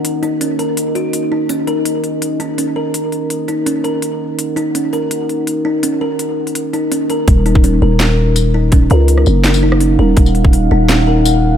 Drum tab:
HH |x-x-x-x-x-x-x---|x-x-x-x-x-x-x---|x-x-x-x-x-x-x---|x-x-x-x-x-x-x---|
TB |----------------|----------------|----------------|----------------|
SD |----------------|----------------|----------------|----------------|
BD |----------------|----------------|----------------|----------------|

HH |x---x--xx-x-x-x-|x-x-x---x---x---|x-x-x---x---x---|x-x-x---x---x---|
TB |----------------|------------x---|------x--x------|-x----------x---|
SD |----------------|--------o-------|-----r--o--r----|--------o-------|
BD |----------------|o--o------------|o---------------|o--o------------|